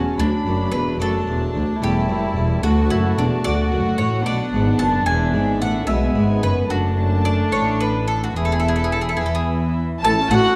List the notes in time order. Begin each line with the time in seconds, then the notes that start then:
Already playing: E2 F#3 C#4 F#4 A5
0.18 D2 D4 B5
0.46 F#1 F#2
0.72 E1 E2 B4
1.00 F#1 F#2 A3 D4 F#4 A4 A5
1.27 E1 E2
1.54 D2
1.82 E1 E2 G3 A3 C#4 E4 G4 A5
2.09 F#1 F#2
2.35 E1 E2
2.63 D2 A3 D4 F#4 A5
2.90 F#1 F#2 E4
3.17 E1 E2 D4
3.44 D2 A3 D4 F#4 D5 F#5
3.72 F#1 F#2
3.98 A1 A2 C#5
4.26 B1 B2 B3 D4 F#4 D5
4.53 G#1 G#2
4.79 F#1 F#2 A5
5.06 E1 E2 B3 E5 G#5
5.34 G#1 G#2
5.61 A1 A2 F#5
5.87 B1 B2 G#3 B3 E4 E5 G#5
6.14 G#1 G#2
6.42 F#1 F#2 B4
6.70 F#1 F#2 A3 D4 F#4 A5
7.25 D5
7.52 A1 A2 A3 D4 C#5
7.81 B4
8.08 A4
8.24 F#4
8.36 E1 E2 B3 E4 G#4 E5
8.45 A4
8.52 G#4
8.60 A4
8.68 G#4
8.76 A4
8.84 G#4
8.92 A4
9.01 G#4
9.09 A4
9.17 E2 E3 B3 G#4
9.21 E3 E4
9.26 A4
9.35 G#4
10.02 A1 A2 E4 A4 A5
10.17 A3 C#4
10.30 A1 A2 C#4 E4 F#4 F#5
10.44 C#4 A4